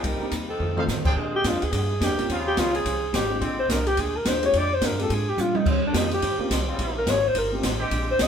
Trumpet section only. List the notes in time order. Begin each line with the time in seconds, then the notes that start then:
0.76 D#4 A4 C5 F5
1.05 D4 G#4 C5 G5